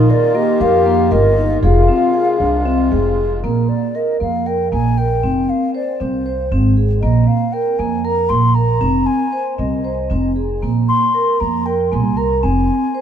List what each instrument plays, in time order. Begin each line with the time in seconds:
Already playing: harmonium D#3 A#3 F4, french horn D#4, flute A#4
0.10 vibraphone A#4, flute D5
0.35 vibraphone A#3, french horn G4, flute D#5
0.60 upright bass F2, vibraphone A#4, flute F5
0.86 vibraphone A#3
1.11 upright bass G1, vibraphone A#4, flute D#5
1.37 vibraphone D#4
1.62 upright bass F1, harmonium C3 G#3, french horn F4, vibraphone G#4, flute F5
1.88 vibraphone C4
2.14 vibraphone G#4
2.40 upright bass C2, french horn D4
2.65 french horn C4, vibraphone C4
2.91 upright bass F1, vibraphone G#4
3.43 upright bass A#1, vibraphone A#3, flute A#4
3.69 flute D5
3.95 vibraphone A#4, flute D#5
4.20 upright bass F2, vibraphone A#3, flute F5
4.46 vibraphone A#4, flute G5
4.72 upright bass A#1, vibraphone A#3, flute G#5
4.98 vibraphone A#4, flute G5
5.24 upright bass F1, vibraphone C4
5.49 flute F5
5.75 vibraphone C5, flute D5
6.00 upright bass C2, vibraphone C4, flute C5
6.26 vibraphone C5
6.51 upright bass G#1, vibraphone C4
6.77 vibraphone G#4
7.01 upright bass A#1, vibraphone A#3, flute D#5
7.27 flute F5
7.53 vibraphone A#4, flute G5
7.79 upright bass F2, vibraphone A#3, flute G#5
8.05 vibraphone A#4, flute A#5
8.29 upright bass A#1, vibraphone A#3, flute C6
8.55 vibraphone A#4, flute A#5
8.81 upright bass F1, vibraphone C4
9.06 flute G#5
9.32 vibraphone C5
9.59 upright bass C2, vibraphone C4, flute D#5
9.84 vibraphone C5
10.10 upright bass F1, vibraphone C4
10.36 vibraphone G#4
10.62 upright bass A#1, vibraphone A#3
10.88 flute C6
11.14 vibraphone A#4
11.40 upright bass F2, vibraphone A#3, flute A#5
11.66 vibraphone A#4, flute G5
11.92 upright bass C2, vibraphone A#3, flute G#5
12.17 vibraphone A#4, flute A#5
12.43 upright bass F1, vibraphone C4, flute G#5
12.95 vibraphone C5